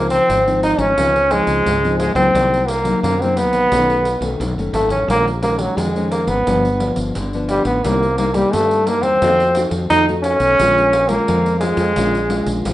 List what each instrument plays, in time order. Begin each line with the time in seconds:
Already playing: fretless electric bass C#2, nylon-string guitar C#3 F3 C4 D#4
0.10 trombone C4, pandeiro
0.29 fretless electric bass G#1, nylon-string guitar G#2, pandeiro
0.47 nylon-string guitar F3 C4 D#4, pandeiro
0.63 trombone D#4, pandeiro
0.78 fretless electric bass G#1, nylon-string guitar F3 C4 D#4, trombone C#4, pandeiro
0.98 fretless electric bass C#2, nylon-string guitar C#3 F3 C4 D#4, pandeiro
1.16 pandeiro
1.31 nylon-string guitar F3 C4 D#4, trombone G#3, pandeiro
1.47 fretless electric bass C#2, pandeiro
1.65 fretless electric bass C#2, nylon-string guitar G#2, pandeiro
1.84 nylon-string guitar F3 C4 D#4, pandeiro
1.99 trombone G#3, pandeiro
2.15 fretless electric bass C#2, nylon-string guitar F#3 A#3 D#4, trombone C4, pandeiro
2.35 fretless electric bass C2, nylon-string guitar C3, pandeiro
2.54 pandeiro
2.68 trombone A#3, pandeiro
2.84 nylon-string guitar F#3 A#3 D#4, pandeiro
3.03 fretless electric bass F#2, nylon-string guitar C3, trombone A#3, pandeiro
3.22 nylon-string guitar F#3 A#3 D#4, trombone C4, pandeiro
3.37 trombone B3, pandeiro
3.52 fretless electric bass A#1, pandeiro
3.72 fretless electric bass B1, nylon-string guitar B2 D#3 A3 C#4, pandeiro
3.90 pandeiro
4.05 pandeiro
4.21 fretless electric bass B1, nylon-string guitar D#3 A3 C#4, pandeiro
4.40 fretless electric bass B1, nylon-string guitar F#2, pandeiro
4.58 fretless electric bass F#1, nylon-string guitar D#3 A3 C#4, pandeiro
4.73 fretless electric bass G#1, trombone A3, pandeiro
4.89 fretless electric bass A1, trombone C#4, pandeiro
5.08 fretless electric bass A#1, nylon-string guitar A#2 D#3 G#3 C#4, trombone A#3, pandeiro
5.28 pandeiro
5.42 nylon-string guitar D#3 G#3 C#4, trombone A#3, pandeiro
5.59 trombone F#3, pandeiro
5.77 fretless electric bass F2, nylon-string guitar F2, trombone G#3, pandeiro
5.96 nylon-string guitar D#3 G#3 C#4, pandeiro
6.12 trombone A#3, pandeiro
6.27 fretless electric bass G#1, trombone B3, pandeiro
6.47 fretless electric bass G1, nylon-string guitar G2 F3 B3 D4, pandeiro
6.65 pandeiro
6.80 nylon-string guitar F3 B3 D4, pandeiro
6.96 fretless electric bass G1, pandeiro
7.15 fretless electric bass G1, nylon-string guitar D3, pandeiro
7.33 nylon-string guitar F3 B3 D4, pandeiro
7.49 trombone G3, pandeiro
7.65 fretless electric bass A1, trombone B3, pandeiro
7.84 fretless electric bass C2, nylon-string guitar C3 G3 A#3 D#4, trombone A#3, pandeiro
8.03 pandeiro
8.18 nylon-string guitar G3 A#3 D#4, trombone A#3, pandeiro
8.34 nylon-string guitar G3 A#3 D#4, trombone G3, pandeiro
8.53 nylon-string guitar G2, fretless electric bass G2, trombone A3, pandeiro
8.71 pandeiro
8.87 nylon-string guitar G3 A#3 D#4, trombone A#3, pandeiro
9.02 fretless electric bass E2, trombone C4, pandeiro
9.22 fretless electric bass F2, nylon-string guitar F3 A3 D#4 F#4, pandeiro
9.40 pandeiro
9.55 nylon-string guitar A3 D#4 F#4, pandeiro
9.71 fretless electric bass F2, pandeiro
9.90 fretless electric bass F2, nylon-string guitar A3 D#4 F#4, trombone D#4, pandeiro
10.09 nylon-string guitar A3 D#4 F#4, pandeiro
10.23 trombone C#4, pandeiro
10.40 fretless electric bass B1, pandeiro
10.59 fretless electric bass A#1, nylon-string guitar A#2 G#3 C#4 F4, pandeiro
10.78 pandeiro
10.93 pandeiro
11.08 nylon-string guitar G#3 C#4 F4, trombone A#3, pandeiro
11.28 fretless electric bass F2, nylon-string guitar F3, pandeiro
11.46 pandeiro
11.60 trombone G#3, nylon-string guitar G#3 C#4 F4, pandeiro
11.77 fretless electric bass F2, pandeiro
11.96 fretless electric bass A#1, nylon-string guitar A#2 G#3 C#4 F4, pandeiro
12.15 pandeiro
12.29 nylon-string guitar G#3 C#4 F4, pandeiro
12.46 fretless electric bass A#1, pandeiro
12.65 fretless electric bass A#1, nylon-string guitar F3, pandeiro